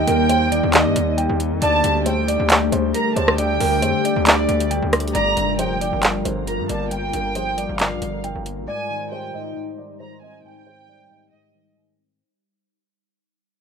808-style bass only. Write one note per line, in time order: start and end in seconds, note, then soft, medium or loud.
0.07 0.61 D#2 loud
0.63 0.87 D#2 loud
0.85 0.95 G2 loud
0.96 1.28 D#2 loud
1.29 1.53 D#2 loud
1.51 1.61 F2 loud
1.62 1.83 D2 loud
1.84 2.37 D2 loud
2.40 2.71 D2 loud
2.72 2.93 D2 loud
3.16 3.59 D2 loud
3.60 3.84 D2 loud
3.82 3.94 F2 loud
4.16 4.47 D2 loud
4.49 4.81 D2 loud
4.82 5.14 D2 loud
5.15 5.36 G1 loud
5.37 5.91 F1 loud
5.93 6.24 G1 loud
6.25 6.60 G1 loud
6.59 6.69 G2 medium
6.69 7.12 G1 loud
7.13 7.67 G1 loud
7.69 7.93 G1 loud
7.91 8.01 A#1 loud
8.02 8.34 G1 loud
8.35 8.59 G1 loud
8.57 8.67 A1 loud